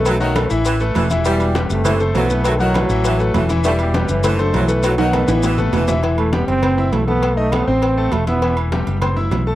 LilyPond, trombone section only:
\new Staff \with { instrumentName = "Trombone section" } { \clef bass \time 4/4 \key e \minor \tempo 4 = 201 << { a4 r2. | g4 r8 a4. b4 | a8 fis2. r8 | a8 g4 e4 d8 e4 |
fis8 b2. r8 | r1 | r1 | r1 | } \\ { dis4 r2. | b,4 r8 c4. e4 | dis8 a,2. r8 | d8 b,4 a,4 fis,8 a,4 |
a,8 dis4. r2 | r1 | r1 | r1 | } >> }